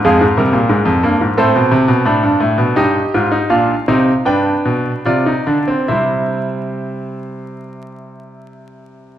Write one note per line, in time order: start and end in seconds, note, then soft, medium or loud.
0.04 0.20 F2 medium
0.04 0.25 G#3 medium
0.04 0.24 G#4 medium
0.04 1.33 F5 medium
0.21 0.36 G#2 medium
0.37 0.52 C3 medium
0.37 0.57 G3 medium
0.37 1.34 A#4 medium
0.53 0.68 A#2 medium
0.69 0.85 G#2 medium
0.69 0.90 G#3 medium
0.85 1.01 F2 medium
1.03 1.19 G2 medium
1.03 1.24 A#3 medium
1.21 1.36 G#2 medium
1.37 1.53 A2 medium
1.37 2.04 C4 medium
1.37 2.72 A4 medium
1.37 2.72 C5 medium
1.56 1.71 B2 medium
1.72 1.88 C3 medium
1.88 2.04 B2 medium
2.05 2.22 A2 medium
2.05 2.74 D4 medium
2.23 2.40 G2 medium
2.40 2.57 A2 medium
2.58 2.75 B2 medium
2.76 2.98 G2 medium
2.76 2.99 D#4 medium
2.76 3.47 G4 medium
2.76 3.46 D#5 medium
3.14 3.36 G#2 medium
3.14 3.31 F4 medium
3.32 3.49 D#4 medium
3.50 3.73 A#2 medium
3.50 3.73 D4 medium
3.50 3.72 F4 medium
3.50 4.23 F5 medium
3.88 4.11 C3 medium
3.88 4.11 C4 medium
3.88 4.11 D#4 medium
4.25 4.50 G2 medium
4.25 5.02 D4 medium
4.25 5.84 B4 medium
4.25 5.02 G5 medium
4.65 4.90 B2 medium
5.05 5.31 C3 medium
5.05 5.24 F4 medium
5.05 5.86 D5 medium
5.26 5.45 D#4 medium
5.47 5.72 D3 medium
5.47 5.66 D4 medium
5.68 5.87 C4 medium
5.88 9.19 C3 medium
5.88 9.19 G3 medium
5.88 9.19 C4 medium
5.88 9.19 E4 medium
5.88 9.19 C5 medium
5.88 9.19 E5 medium